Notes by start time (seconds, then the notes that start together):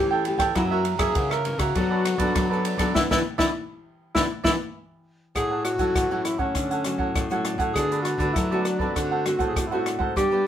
Already playing: E3 A3 C#4 G4
0.11 A4 C#5 G5
0.24 A3 C#4 E4 G4 A4 C#5 G5, ride
0.38 E3 A4 C#5 G5, kick, cross-stick, ride
0.55 F#2 E3 F#3 A#3 C#4 E4 F#4 A#4 C#5 E5, kick, cross-stick, ride
0.71 F#4 A#4 C#5 E5
0.85 ride
0.98 E3 F#3 A#3 C#4 G#4 A#4 C#5 E5, kick, cross-stick, ride
1.15 C#3 F#4 A#4 C#5 E5, kick, ride
1.30 A#4 C#5 E5, cross-stick
1.44 E3 A#3 C#4, muted cavaquinho stroke, ride
1.58 C#3 F#4 A#4 C#5 E5, kick, cross-stick, ride
1.74 F#3 B3 D4 A4 B4 D5, kick, ride
1.90 A4 B4 D5
2.04 muted cavaquinho stroke, cross-stick, ride
2.18 F#3 B3 D4 A4 B4 D5, kick, ride
2.35 F#3, kick, cross-stick, ride
2.50 B3 D4 A4 B4 D5
2.64 D4 A4 B4 D5, ride
2.78 F#3 B3 D4 A4 B4 D5, kick, cross-stick, ride
2.94 E3 B3 D4 E4 B4 D5 E5, kick, snare
3.10 E3 B3 D4 E4 B4 D5 E5, kick, snare
3.38 E3 B3 D4 E4 B4 D5 E5, kick, snare
4.15 E3 B3 D4 E4 B4 D5 E5, kick, snare
4.44 E3 B3 D4 E4 B4 D5 E5, kick, snare
5.35 A2 F#4 G#4 A4 C#5 F#5, kick, cross-stick, closed hi-hat
5.50 A4 C#5 F#5
5.65 F#4, cross-stick, closed hi-hat
5.78 A2 F#3 C#4 E4 A4 C#5 F#5, kick, closed hi-hat
5.95 A2 E3 F#4 A4 C#5 F#5, kick, cross-stick, closed hi-hat
6.11 F#3 C#4 E4 A4 C#5 F#5
6.25 E4, cross-stick, closed hi-hat
6.38 F#3 A3 C#4 A4 C#5 F#5, kick
6.55 D3 D4 A4 C#5 F#5, kick, cross-stick, closed hi-hat
6.71 A4 C#5 F#5, closed hi-hat
6.84 F#3 A3 C#4, muted cavaquinho stroke, cross-stick, closed hi-hat
6.98 A2 A4 C#5 F#5, kick
7.14 A2, kick, cross-stick, closed hi-hat
7.30 F#3 A3 C#4 A4 C#5 F#5, closed hi-hat
7.45 D4 A4 C#5 F#5, cross-stick, closed hi-hat
7.58 A2 A4 C#5 F#5, kick, closed hi-hat
7.74 D3 A3 B3 D4 F#4 G#4 A4 B4 D5, kick, cross-stick, closed hi-hat
7.91 A4 B4 D5, closed hi-hat
8.02 F#4, cross-stick, closed hi-hat
8.18 D3 A3 B3 F#4 A4 B4 D5, kick, closed hi-hat
8.33 D3 F#3 D4 E4 A4, kick, cross-stick, closed hi-hat
8.37 B4 D5
8.51 A3 B3 F#4 A4 B4 D5
8.61 D4
8.65 muted cavaquinho stroke, cross-stick, closed hi-hat
8.79 A3 C4 F#4 A4 B4 D5, kick
8.94 D3 D4 F#4 A4 C5 F#5, kick, cross-stick, closed hi-hat
9.11 A4 C5 F#5
9.26 A3 C4 F#4, muted cavaquinho stroke, cross-stick, closed hi-hat
9.39 A2 A4 C5 F#5, kick, closed hi-hat
9.49 G#4
9.56 A2 F#4, kick, cross-stick, closed hi-hat
9.67 E4
9.71 A3 C4 F#4 A4 C5 F#5
9.78 F#4
9.85 D4 A4 C5 F#5, cross-stick, closed hi-hat
9.99 G#2 A4 C5 F#5, kick
10.16 G2 G3 B3 D4 G4 B4 D5, kick, cross-stick, closed hi-hat
10.31 G3 B3 D4 G4 B4 D5